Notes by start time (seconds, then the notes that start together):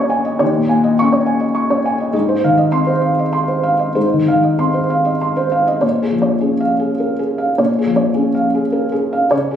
Already playing: D#2 A#2 C#4 C#5 D#5 G#5 C#6
0.10 G#5
0.25 D#5
0.39 D#2 C#5
0.55 A#2
0.69 A#2 G#5
0.84 D#5
0.99 C#4 C#6
1.12 C#5
1.26 G#5
1.40 D#5
1.55 C#6
1.70 C#5
1.86 G#5
2.00 D#5
2.13 G#2 D#5
2.28 C5
2.44 D#3 F5
2.58 D#5
2.72 C4 C6
2.87 C5
3.01 F5
3.19 D#5
3.33 C6
3.48 C5
3.63 F5
3.79 D#5
3.95 G#2 C5
4.13 D#3
4.28 D#3 F5
4.43 D#5
4.59 C4 C6
4.74 C5
4.90 F5
5.05 D#5
5.21 C6
5.37 C5
5.52 F5
5.67 D#5
5.81 A#2 C#5
6.02 G#4
6.12 F3
6.22 C#5
6.41 C#4 G#4
6.61 F5
6.79 G#4
7.00 A#4
7.19 G#4
7.38 F5
7.58 A#2 C#5
7.79 G#4
7.86 F3
7.96 C#5
8.14 C#4 G#4
8.35 F5
8.55 G#4
8.72 A#4
8.92 G#4
9.13 F5
9.31 C#3 C#5
9.51 G#4